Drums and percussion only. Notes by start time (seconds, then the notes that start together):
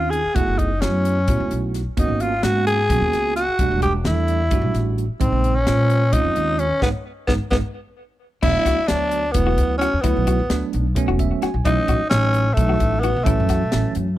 0.13 closed hi-hat
0.36 kick, closed hi-hat
0.59 kick, closed hi-hat
0.82 snare, closed hi-hat
1.05 closed hi-hat
1.28 kick, closed hi-hat
1.51 closed hi-hat
1.74 snare, closed hi-hat
1.97 kick, closed hi-hat
2.20 closed hi-hat
2.43 snare, closed hi-hat
2.67 closed hi-hat
2.90 kick, closed hi-hat
3.13 snare, closed hi-hat
3.36 snare, closed hi-hat
3.59 kick, closed hi-hat
3.82 kick, closed hi-hat
4.05 snare, closed hi-hat
4.28 closed hi-hat
4.51 kick, closed hi-hat
4.75 snare, closed hi-hat
4.98 closed hi-hat
5.21 kick, closed hi-hat
5.44 closed hi-hat
5.67 snare, closed hi-hat
5.90 closed hi-hat
6.13 kick, closed hi-hat
6.36 closed hi-hat
6.59 closed hi-hat
6.82 kick, snare
7.28 kick, snare
7.51 kick, snare
8.43 kick, crash
8.66 kick, snare, closed hi-hat
8.88 snare, closed hi-hat
9.11 closed hi-hat
9.34 kick, closed hi-hat
9.58 kick, closed hi-hat
9.81 snare, closed hi-hat
10.04 kick, closed hi-hat
10.27 kick, closed hi-hat
10.50 snare, closed hi-hat
10.73 closed hi-hat
10.96 kick, closed hi-hat
11.19 kick, closed hi-hat
11.42 snare, closed hi-hat
11.65 kick, closed hi-hat
11.88 kick, closed hi-hat
12.11 snare, closed hi-hat
12.34 closed hi-hat
12.57 kick, closed hi-hat
12.80 kick, closed hi-hat
13.03 closed hi-hat
13.26 kick, closed hi-hat
13.49 kick, snare, closed hi-hat
13.72 snare, closed hi-hat
13.95 closed hi-hat